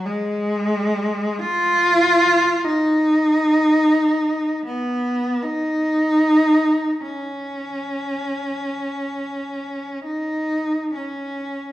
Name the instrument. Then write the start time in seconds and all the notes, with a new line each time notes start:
cello
0.05 G#3
1.40 F4
2.64 D#4
4.66 B3
5.43 D#4
7.01 C#4
10.05 D#4
10.95 C#4